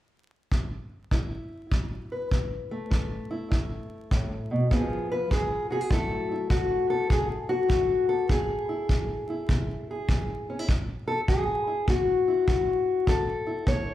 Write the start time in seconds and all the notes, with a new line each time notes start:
0.52 kick
1.11 F#2 E4, kick
1.71 F#3, kick
2.12 B4
2.31 C#3, kick
2.71 A3
2.91 F#3, kick
3.31 E4
3.50 F#2 E4, kick
4.11 A2, kick
4.51 B2
4.71 C#3 F3 B3 F4 G#4, kick
5.11 B4
5.31 F3 G#4, kick
5.70 F#4 G#4
5.81 G#4
5.91 F#2 F#3 A3 E4 A4, kick
6.32 E4
6.50 F#3 F#4, kick
6.90 A4
7.10 C#3 G#4, kick
7.49 F#4
7.69 F#3, kick
8.09 A4
8.29 F#2 G#4, kick
8.69 E4
8.89 F#3, kick
9.30 E4
9.49 C#3, kick
9.91 G#4
10.09 F#3, kick
10.50 C#4
10.59 E4
10.69 F#2, kick
11.07 A4
11.28 F#3 G#4, kick
11.67 E4
11.88 C#3 F#4, kick
12.28 E4
12.48 F#3 F#4, kick
13.07 F#2 A4, kick
13.47 E4
13.67 A3 C#5, kick